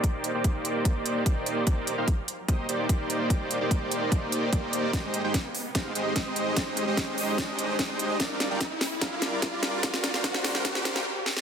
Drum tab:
HH |x-x-x-x-x-x-x-x-|x-x-x-x-x-x-x-x-|x-x-x-x-x-x-x-x-|x-x-x-o-x-x-x-x-|
SD |----------------|----------------|----------------|o---o---o---o---|
BD |o---o---o---o---|o---o---o---o---|o---o---o---o---|o---o---o---o---|

HH |x-x-x-o-x-x-x-x-|x-x-x-o-x-x-x-x-|x-x-x-o-x-x-----|
SD |o---o---o---o---|o-o-o-o-o-o-o-o-|oooooooooooo--oo|
BD |o---o---o---o---|o---o---o---o---|o---o---o-------|